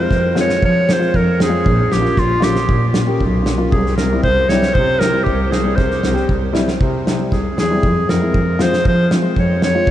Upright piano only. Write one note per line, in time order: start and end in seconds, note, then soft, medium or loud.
0.00 0.10 C4 medium
0.00 0.10 F4 medium
0.35 0.49 G#3 medium
0.35 0.49 C4 medium
0.35 0.49 F4 medium
0.87 0.94 C4 soft
0.87 0.94 F4 soft
0.99 1.13 G#3 medium
0.99 1.13 C4 medium
0.99 1.13 F4 medium
1.38 1.46 C4 soft
1.38 1.46 G4 soft
1.49 1.64 G#3 medium
1.49 1.64 C4 medium
1.49 1.64 F4 medium
1.88 1.96 C#4 soft
1.88 1.97 F4 soft
2.01 2.16 A#3 medium
2.01 2.16 C#4 medium
2.01 2.16 F4 medium
2.40 2.55 A#3 medium
2.40 2.55 C#4 medium
2.40 2.55 F4 medium
2.94 3.01 C#4 soft
2.94 3.01 F4 medium
3.06 3.20 A#3 medium
3.06 3.20 C#4 medium
3.06 3.20 G4 medium
3.42 3.51 C#4 soft
3.42 3.51 F4 soft
3.58 3.71 A#3 medium
3.58 3.72 C#4 medium
3.58 3.72 F4 medium
3.98 4.05 C4 soft
3.98 4.05 E4 soft
4.12 4.24 G3 medium
4.12 4.24 C4 medium
4.12 4.25 E4 medium
4.50 4.63 G3 medium
4.50 4.63 C4 medium
4.50 4.63 E4 medium
5.01 5.07 C4 soft
5.01 5.08 E4 soft
5.13 5.26 G3 medium
5.13 5.27 C4 medium
5.13 5.27 E4 medium
5.50 5.58 C4 soft
5.50 5.58 E4 soft
5.63 5.77 G3 medium
5.63 5.77 C4 medium
5.63 5.78 E4 medium
6.03 6.10 C4 soft
6.03 6.10 E4 soft
6.14 6.28 G3 medium
6.14 6.28 C4 medium
6.14 6.28 G4 medium
6.53 6.67 G3 medium
6.53 6.67 C4 medium
6.53 6.67 E4 medium
7.04 7.12 C4 medium
7.04 7.12 E4 medium
7.18 7.32 G3 medium
7.18 7.31 C4 soft
7.18 7.31 E4 medium
7.58 7.64 C4 soft
7.58 7.64 E4 soft
7.71 7.84 G3 medium
7.71 7.83 C4 medium
7.71 7.83 E4 medium
8.09 8.15 C4 soft
8.09 8.15 F4 soft
8.21 8.34 G#3 medium
8.21 8.34 C4 medium
8.21 8.34 E4 medium
8.59 8.73 G#3 medium
8.59 8.72 C4 medium
8.59 8.72 F4 medium
9.10 9.17 C4 soft
9.10 9.17 F4 soft
9.22 9.36 G#3 medium
9.22 9.36 C4 medium
9.22 9.36 F4 medium
9.61 9.68 C4 soft
9.61 9.68 F4 soft
9.74 9.88 G#3 medium
9.74 9.87 C4 medium
9.74 9.88 F4 medium